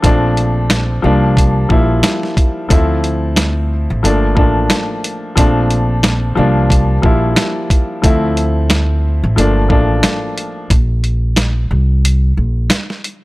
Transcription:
0.02 1.00 A#1 loud
0.02 1.01 F3 medium
0.02 1.03 A3 medium
0.02 1.03 C4 medium
0.02 1.04 D4 loud
0.02 kick loud
0.02 closed hi-hat loud
0.37 closed hi-hat soft
0.70 snare loud
0.70 snare medium
0.70 closed hi-hat medium
1.02 1.66 C2 medium
1.02 1.59 F3 medium
1.02 1.59 G3 medium
1.02 1.60 A#3 medium
1.02 1.60 D4 loud
1.37 kick loud
1.37 closed hi-hat loud
1.69 2.01 A#1 medium
1.69 2.45 F3 medium
1.69 2.46 G3 medium
1.69 2.46 A#3 medium
1.69 2.47 E4 medium
1.69 kick medium
2.03 snare loud
2.03 snare medium
2.03 closed hi-hat medium
2.23 snare soft
2.37 kick medium
2.37 closed hi-hat medium
2.69 3.86 D2 loud
2.69 3.69 F3 medium
2.69 3.70 A3 medium
2.69 3.70 C4 medium
2.69 3.70 E4 loud
2.69 kick loud
2.69 closed hi-hat loud
3.04 closed hi-hat soft
3.36 snare loud
3.36 snare medium
3.36 closed hi-hat medium
3.90 4.03 A1 medium
4.03 4.37 G1 loud
4.03 4.30 F3 medium
4.03 4.30 A3 medium
4.03 4.31 A#3 medium
4.03 4.31 D4 loud
4.03 closed hi-hat loud
4.35 4.68 A1 medium
4.35 5.12 F3 medium
4.35 5.12 A3 medium
4.35 5.13 A#3 medium
4.35 5.13 D4 loud
4.35 kick medium
4.70 snare loud
4.70 snare medium
4.70 closed hi-hat medium
5.04 closed hi-hat medium
5.36 6.33 A#1 loud
5.36 6.34 F3 medium
5.36 6.36 A3 medium
5.36 6.37 C4 medium
5.36 6.37 D4 loud
5.36 kick loud
5.36 closed hi-hat loud
5.71 closed hi-hat soft
6.03 snare loud
6.03 snare medium
6.03 closed hi-hat medium
6.35 7.00 C2 medium
6.35 6.92 F3 loud
6.35 6.92 G3 medium
6.35 6.93 A#3 medium
6.35 6.93 D4 loud
6.70 kick medium
6.70 closed hi-hat loud
7.02 7.34 A#1 medium
7.02 7.79 F3 medium
7.02 7.79 G3 medium
7.02 7.80 A#3 medium
7.02 7.80 E4 medium
7.02 kick medium
7.36 snare loud
7.36 snare medium
7.36 closed hi-hat medium
7.70 kick loud
7.70 closed hi-hat medium
8.02 9.19 D2 loud
8.02 9.02 F3 medium
8.02 9.03 A3 medium
8.02 9.03 C4 medium
8.02 9.04 E4 loud
8.02 kick loud
8.02 closed hi-hat loud
8.37 closed hi-hat soft
8.70 snare loud
8.70 snare medium
8.70 closed hi-hat medium
9.24 9.36 A1 loud
9.36 9.70 G1 loud
9.36 9.63 F3 medium
9.36 9.63 A3 medium
9.36 9.64 A#3 medium
9.36 9.64 D4 loud
9.36 closed hi-hat loud
9.69 10.01 A1 medium
9.69 10.45 F3 medium
9.69 10.46 A3 medium
9.69 10.46 A#3 medium
9.69 10.47 D4 loud
9.69 kick medium
10.03 snare loud
10.03 snare medium
10.03 closed hi-hat medium
10.38 closed hi-hat medium
10.70 11.66 A#1 loud
10.70 kick loud
10.70 closed hi-hat loud
11.04 closed hi-hat soft
11.36 snare loud
11.36 snare medium
11.36 closed hi-hat medium
11.71 12.33 C2 medium
12.05 closed hi-hat medium
12.37 12.68 A#1 medium
12.70 snare loud
12.70 snare medium
12.70 closed hi-hat medium
12.90 snare soft
13.04 closed hi-hat medium

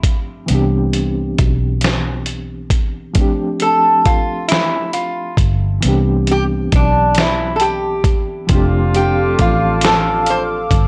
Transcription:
0.00 0.44 F3 medium
0.00 0.45 A3 medium
0.00 0.46 C4 medium
0.00 0.47 D4 medium
0.00 0.48 G4 medium
0.00 kick medium
0.00 closed hi-hat medium
0.04 0.45 G1 medium
0.46 3.10 E3 medium
0.46 3.11 B3 medium
0.46 closed hi-hat medium
0.50 1.35 C2 loud
0.50 3.13 C4 medium
0.50 3.14 D4 medium
0.55 3.15 G4 medium
0.93 closed hi-hat soft
1.38 3.16 B1 medium
1.38 kick medium
1.38 closed hi-hat soft
1.81 snare loud
1.81 closed hi-hat medium
2.26 closed hi-hat soft
2.70 kick medium
2.70 closed hi-hat medium
3.14 4.06 F1 loud
3.14 5.78 F3 medium
3.14 5.78 A3 medium
3.14 5.80 C4 medium
3.14 kick medium
3.14 closed hi-hat medium
3.19 5.80 D4 medium
3.19 5.81 G4 medium
3.60 4.07 A4 medium
3.60 closed hi-hat soft
4.05 5.35 A1 medium
4.05 4.48 F4 medium
4.05 kick medium
4.05 closed hi-hat soft
4.48 4.93 E4 medium
4.48 snare loud
4.48 closed hi-hat medium
4.93 5.35 F4 medium
4.93 closed hi-hat soft
5.37 5.79 G1 medium
5.37 kick medium
5.37 closed hi-hat medium
5.81 8.44 E3 medium
5.81 8.45 B3 medium
5.81 8.46 C4 medium
5.81 closed hi-hat medium
5.85 6.69 C2 loud
5.85 8.47 D4 medium
5.85 8.48 G4 medium
6.27 closed hi-hat soft
6.31 6.43 G4 loud
6.72 8.46 B1 medium
6.72 7.19 D4 medium
6.72 kick medium
6.72 closed hi-hat soft
7.15 snare loud
7.15 closed hi-hat medium
7.20 7.57 E4 medium
7.56 7.62 A4 medium
7.56 closed hi-hat soft
7.61 8.02 G4 medium
8.04 kick medium
8.04 closed hi-hat medium
8.47 9.35 F1 loud
8.47 10.88 F3 medium
8.47 8.56 G3 soft
8.47 10.68 C4 medium
8.47 10.68 D4 medium
8.47 10.68 F4 medium
8.47 10.88 A4 medium
8.47 10.88 F5 medium
8.47 10.88 D6 medium
8.47 kick medium
8.47 closed hi-hat medium
8.51 10.88 C4 medium
8.51 10.88 D4 medium
8.51 10.88 G4 medium
8.56 10.88 A3 medium
8.95 9.41 G4 medium
8.95 closed hi-hat soft
9.39 10.68 A1 medium
9.39 9.86 F4 medium
9.39 kick medium
9.39 closed hi-hat soft
9.81 10.30 A4 medium
9.81 snare loud
9.81 closed hi-hat medium
10.26 10.42 C5 medium
10.26 closed hi-hat medium
10.71 10.88 G1 medium
10.71 kick medium
10.71 closed hi-hat medium

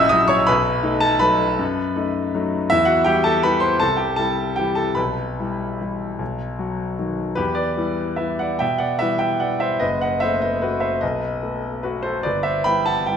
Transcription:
0.00 0.52 A#1 medium
0.00 0.12 C#4 medium
0.00 0.13 E4 medium
0.00 0.11 D#5 loud
0.00 0.53 E5 loud
0.00 0.52 F#5 loud
0.00 0.09 D#6 loud
0.00 0.53 E6 loud
0.00 0.53 F#6 loud
0.09 0.46 F#3 medium
0.09 0.45 C#4 medium
0.09 0.46 E4 medium
0.09 0.30 D#5 medium
0.09 0.30 D#6 loud
0.28 0.47 C#5 medium
0.28 0.48 C#6 loud
0.47 0.84 B1 medium
0.47 1.00 B4 medium
0.47 1.03 B5 loud
0.83 1.19 A3 medium
0.83 1.18 D#4 medium
1.00 1.21 A4 medium
1.00 1.22 A5 loud
1.19 1.55 F#3 medium
1.19 1.56 A3 medium
1.19 1.56 D#4 medium
1.19 2.65 B4 medium
1.19 2.69 B5 loud
1.59 1.95 F#2 medium
1.96 2.30 A3 medium
1.96 2.31 D#4 medium
2.35 2.67 F#3 medium
2.35 2.67 A3 medium
2.35 2.67 D#4 medium
2.70 3.07 E2 medium
2.70 2.88 E4 medium
2.70 2.88 E5 loud
2.85 3.05 F#4 medium
2.85 3.06 F#5 loud
3.04 3.41 G3 medium
3.04 3.42 E4 medium
3.04 3.24 G4 medium
3.04 3.25 G5 loud
3.24 3.44 A4 medium
3.24 3.44 A5 loud
3.43 3.78 E3 medium
3.43 3.78 G3 soft
3.43 3.79 E4 medium
3.43 3.62 B4 medium
3.43 3.63 B5 loud
3.60 3.79 C5 medium
3.60 3.80 C6 medium
3.80 4.17 C2 medium
3.80 3.98 A4 medium
3.80 3.99 A5 loud
3.97 4.17 G4 medium
3.97 4.17 G5 medium
4.16 4.54 G3 medium
4.16 4.54 E4 medium
4.16 4.55 A4 medium
4.16 4.57 A5 medium
4.56 4.95 E3 soft
4.56 4.95 G3 soft
4.56 4.95 E4 soft
4.56 4.76 G4 medium
4.56 4.77 G5 medium
4.75 4.96 A4 medium
4.75 4.97 A5 medium
4.95 5.36 B1 medium
4.95 7.15 B4 medium
4.95 7.18 B5 medium
5.39 5.77 G3 soft
5.39 5.77 E4 medium
5.81 6.17 E3 soft
5.81 6.17 G3 soft
5.81 6.17 E4 soft
6.19 6.58 B1 medium
6.59 6.95 F#3 soft
6.59 6.95 F#4 medium
6.99 7.35 D#3 soft
6.99 7.35 F#3 soft
6.99 7.35 F#4 soft
7.35 7.78 E2 medium
7.35 7.57 G4 medium
7.35 7.54 B4 medium
7.55 8.15 B4 medium
7.55 8.19 D5 medium
7.76 8.15 E3 soft
7.76 8.16 G3 soft
7.76 8.16 E4 medium
8.16 8.57 E3 soft
8.16 8.57 G3 soft
8.16 8.57 E4 soft
8.16 8.38 B4 medium
8.16 8.39 E5 medium
8.39 8.60 D5 medium
8.39 8.60 F#5 medium
8.59 9.00 B2 medium
8.59 8.79 E5 medium
8.59 8.80 G5 medium
8.78 9.00 D5 medium
8.78 9.00 F#5 medium
8.99 9.38 E3 soft
8.99 9.38 G3 soft
8.99 9.39 E4 soft
8.99 9.20 B4 medium
8.99 9.18 E5 medium
9.19 9.40 E5 medium
9.19 9.41 G5 medium
9.40 9.78 E3 soft
9.40 9.78 G3 soft
9.40 9.78 E4 soft
9.40 9.60 D5 medium
9.40 9.61 F#5 medium
9.60 9.80 C5 medium
9.60 9.81 E5 medium
9.80 10.20 F#1 medium
9.80 9.99 B4 medium
9.80 10.00 D#5 medium
10.01 10.21 D#5 medium
10.01 10.22 F#5 medium
10.20 10.59 A3 medium
10.20 10.60 B3 medium
10.20 10.41 C5 medium
10.20 10.41 E5 medium
10.42 10.60 B4 medium
10.42 10.62 D#5 medium
10.62 10.99 A3 soft
10.62 10.99 B3 soft
10.62 10.82 F#4 medium
10.62 10.82 B4 medium
10.80 11.00 C5 medium
10.80 11.01 E5 medium
11.01 11.42 B1 medium
11.01 11.80 B4 soft
11.01 11.84 D#5 medium
11.43 11.81 A3 soft
11.43 11.81 B3 medium
11.83 12.21 A3 soft
11.83 12.22 B3 soft
11.83 12.04 F#4 medium
11.83 12.04 B4 medium
12.03 12.23 A4 medium
12.03 12.24 C5 medium
12.23 12.65 G1 medium
12.23 12.44 B4 medium
12.23 12.45 D5 medium
12.43 12.65 C5 medium
12.43 12.65 E5 medium
12.64 13.04 G3 soft
12.64 13.04 B3 soft
12.64 13.04 E4 soft
12.64 12.85 G5 medium
12.64 12.86 B5 loud
12.86 13.06 F#5 medium
12.86 13.07 A5 medium
13.06 13.17 G3 soft
13.06 13.17 B3 soft
13.06 13.17 E4 soft
13.06 13.17 E5 medium
13.06 13.17 G5 medium

